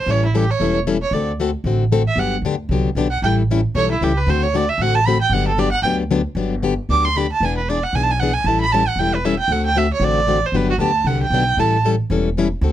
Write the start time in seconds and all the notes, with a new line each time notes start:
Already playing: C5
0.06 A1 E3 G3 C#4 E4 A4 C#5
0.26 E4
0.34 E3 G3 C#4 E4 G4 A4
0.51 C#5
0.60 E1 E3 G3 C#4 E4 A4
0.87 E3 G3 C#4 E4 A4
1.02 C#5
1.11 D2 D3 A3 C4 F#4 A4 D5
1.40 D3 A3 C4 F#4 A4
1.64 A1 D3 A3 C4 F#4 A4
1.92 D3 A3 C4 F#4 A4
2.08 E5
2.16 G1 D3 F#3 B3 D4 G4 F#5
2.42 D2 D3 F#3 B3 D4
2.46 G4
2.69 C2 D3 F#3 B3 D4 G4
2.95 B1 D3 F#3 B3 D4 G4
3.10 F#5
3.22 A1 E3 G3 C#4 E4 A4 G5
3.51 E3 G3 C#4 E4 A4
3.75 B1 E3 G3 C#4 E4 A4 C#5
3.92 E4
4.01 C#2 E3 G3 C#4 E4 G4 A4
4.17 B4
4.27 D2 D3 A3 C4 F#4 A4 C5
4.43 C#5
4.54 D3 A3 C4 F#4 A4 D5
4.69 E5
4.78 A1 D3 A3 F#5
4.82 C4 F#4 A4
4.95 A5
5.07 D3 A3 C4 F#4 A4 B5
5.21 G5
5.29 G1 D3 F#5
5.34 F#3 B3 D4 G4
5.48 A4
5.58 D3 F#3 B3 D4 G4 D5
5.72 F#5
5.82 D2 D3 F#3 B3 D4 G4 G5
6.11 D3 F#3 B3 D4 G4
6.35 G1 D3 F#3 B3 D4 G4
6.63 D3 F#3 B3 D4 G4
6.89 D2 D3 F#3 B3 D4 G4 D6
7.05 C6
7.16 D3 F#3 B3 D4 G4 B5
7.32 A5
7.40 E1 E3 B3 D4 G#4
7.44 G#5
7.57 B4
7.69 E3 B3 D4 G#4 D5
7.83 F#5
7.93 B1 E3 B3 D4 G#5
7.97 G#4
8.03 A5
8.11 G#5
8.20 E3 B3 D4 G#4 F#5
8.34 G#5
8.44 A1 E3 G3 C#4 E4 A4 A5
8.61 B5
8.73 E3 G3 C#4 E4 A4 A5
8.88 F#5
8.96 E1 E3 G5
9.00 G3 C#4 E4 A4
9.15 B4
9.25 E3 G3 C#4 E4 A4 E5
9.39 G5
9.48 D2 D3 A3 C4 F#4
9.52 A4 F#5
9.66 G5
9.75 D3 A3 C4 F#4 A4 E5
9.93 C#5
10.00 A1 D3 A3 C4 F#4 A4
10.04 D5
10.27 D3 A3 C4 F#4 A4
10.46 C5
10.52 G1 D3 F#3 B3 D4 G4
10.56 B4
10.70 F#4
10.78 D2 D3 F#3 B3 D4 G4 A5
11.04 C2 D3 F#3 B3 F#5
11.09 D4 G4
11.23 G5
11.30 B1 D3 F#3 D4
11.34 B3 G4
11.57 A1 E3 G3 C#4 E4 A4 A5
11.85 E3 G3 C#4 E4 A4
12.10 E1 E3 G3 C#4 E4 A4
12.37 E3 G3 C#4 E4 A4
12.61 D2 D3 A3 C4 F#4 A4